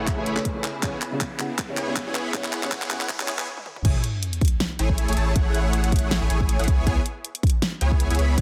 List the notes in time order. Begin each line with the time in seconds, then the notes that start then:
Already playing: A1 C#3 A3 E4 G#4 C#5 F#5, riser
0.07 kick, clap, closed hi-hat
0.17 A1 A3 E4 G#4 B4 C#5 G#5
0.26 A1 A3 E4 G#4 C#5 B5, closed hi-hat
0.36 A3 E4 G#4 B4 C#5, clap
0.45 kick, closed hi-hat
0.54 A3 E4 G#4 B4 C#5
0.64 B3, clap, closed hi-hat
0.82 C#2 C#3 B3 E4 G#4 C#5 G#5, kick, clap, closed hi-hat
1.02 clap, closed hi-hat
1.11 C#3 B3 E4 G#4 C#5
1.21 kick, clap, closed hi-hat
1.39 C#3 B3 E4 G#4 F#5, clap, closed hi-hat
1.58 kick, clap, closed hi-hat
1.68 C#3 B3 E4 G#4 C#5
1.77 C#2 B3 E4 G#4 C#5 G#5, clap, closed hi-hat
1.87 C#3 B3 E4 G#4 C#5
1.96 kick, clap, closed hi-hat
2.06 C#2 C#3 B3 E4 G#4 C#5 G#5
2.15 C#2 B3 E4 G#4 C#5 B5, clap, closed hi-hat
2.33 C#2 C#3 B3 E4 G#4 C#5 F#5, kick, clap, closed hi-hat
2.44 clap
2.53 clap, closed hi-hat
2.62 C#3 B3 E4 G#4 C#5, clap
2.72 kick, clap, closed hi-hat
2.82 clap
2.90 C#3 B3 E4 G#4 F#5, clap, closed hi-hat
3.01 clap
3.09 kick, clap, closed hi-hat
3.19 C#2 C#3 B3 E4 G#4 C#5 G#5, clap
3.28 C#2 B3 E4 G#4 C#5 G#5, clap, closed hi-hat
3.39 clap
3.57 high tom
3.66 mid tom
3.76 mid tom
3.85 A1 A3 E4 G#4 C#5 G#5, kick, closed hi-hat, crash, sub drop
4.04 closed hi-hat
4.23 closed hi-hat
4.33 closed hi-hat
4.41 kick, closed hi-hat
4.45 closed hi-hat
4.48 closed hi-hat
4.60 snare, closed hi-hat
4.79 A1 A3 E4 G#4 C#5 G#5, closed hi-hat
4.90 kick
4.98 closed hi-hat
5.08 A1 A3 E4 G#4 C#5 G#5, closed hi-hat
5.13 A3 G#4 A5, closed hi-hat
5.17 A1 E4 C#5, closed hi-hat
5.36 A1 A3 E4 G#4 C#5 F#5, kick, closed hi-hat
5.54 closed hi-hat
5.73 closed hi-hat
5.84 closed hi-hat
5.92 kick, closed hi-hat
5.96 closed hi-hat
5.99 closed hi-hat
6.11 snare, closed hi-hat
6.21 A1 A3 E4 G#4 C#5 G#5
6.30 A1 A3 E4 G#4 C#5 G#5, closed hi-hat
6.41 kick
6.49 closed hi-hat
6.59 A1 A3 E4 G#4 C#5 F#5, closed hi-hat
6.64 closed hi-hat
6.68 C#2 B3 E4 G#4 C#5 G#5, kick, closed hi-hat
6.87 C#2 B3 E4 G#4 C#5 G#5, kick, closed hi-hat
7.06 closed hi-hat
7.25 closed hi-hat
7.35 closed hi-hat
7.43 kick, closed hi-hat
7.47 closed hi-hat
7.50 closed hi-hat
7.62 snare, closed hi-hat
7.81 C#2 B3 E4 G#4 C#5 G#5, closed hi-hat
7.91 kick
8.00 closed hi-hat
8.10 C#2 B3 E4 G#4 C#5 G#5, closed hi-hat
8.15 B3 E4 G#4 C#5 B5, closed hi-hat
8.19 C#2, closed hi-hat
8.38 C#2 B3 E4 G#4 C#5 F#5, kick, closed hi-hat